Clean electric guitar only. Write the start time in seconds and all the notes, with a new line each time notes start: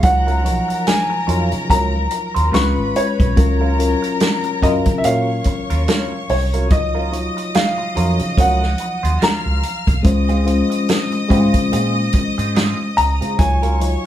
0.27 F#3 C#4 F4 A#4
0.44 muted clean electric guitar stroke
0.68 muted clean electric guitar stroke
1.10 muted clean electric guitar stroke
1.27 F#3 C#4 F4 A#4
1.52 muted clean electric guitar stroke
1.69 F#3 C#4 F4 A#4
2.11 muted clean electric guitar stroke
2.35 F#3 C#4 F4 C5
2.52 G#3 C#4 F4 B4
2.95 muted clean electric guitar stroke
3.19 muted clean electric guitar stroke
3.37 muted clean electric guitar stroke
3.61 F#3 C#4 F4 A#4
3.78 muted clean electric guitar stroke
4.02 muted clean electric guitar stroke
4.45 muted clean electric guitar stroke
4.62 F#3 C#4 F4 A#4
4.87 muted clean electric guitar stroke
5.04 F#3 C#4 F4 A#4
5.46 muted clean electric guitar stroke
5.70 F#3 C#4 F4 A#4
5.87 F#3 C#4 F4 A#4
6.29 muted clean electric guitar stroke
6.54 F#3 C#4 F4 A#4
6.95 F#3 C#4 F4 A#4
7.13 muted clean electric guitar stroke
7.37 muted clean electric guitar stroke
7.78 muted clean electric guitar stroke
7.95 F#3 C#4 F4 A#4
8.19 muted clean electric guitar stroke
8.37 F#3 C#4 F4 A#4
8.79 muted clean electric guitar stroke
9.03 F#3 C#4 F4 C5
9.20 F#3 C#4 F4 A#4
9.62 muted clean electric guitar stroke
9.87 muted clean electric guitar stroke
10.05 muted clean electric guitar stroke
10.29 G#3 C4 F4 G#4
10.46 muted clean electric guitar stroke
10.70 muted clean electric guitar stroke
11.12 muted clean electric guitar stroke
11.29 G#3 C4 F4 G#4
11.53 muted clean electric guitar stroke
11.72 G#3 C4 F4 G#4
12.14 muted clean electric guitar stroke
12.38 G#3 C4 F4 G#4
12.55 G#3 C4 F4 G#4
12.97 muted clean electric guitar stroke
13.21 G#3 C4 F4 G#4
13.63 F#3 C#4 F4 A#4
13.81 muted clean electric guitar stroke